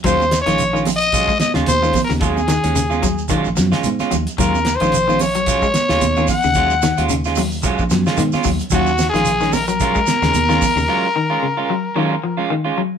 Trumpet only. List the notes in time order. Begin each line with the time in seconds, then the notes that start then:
0.05 C5
0.42 C#5
0.96 D#5
1.41 D#5
1.68 C5
2.04 A#4
2.22 G#4
4.39 A#4
4.76 C5
5.21 C#5
6.30 F#5
8.74 F#4
9.09 G#4
9.53 A#4
9.68 A#4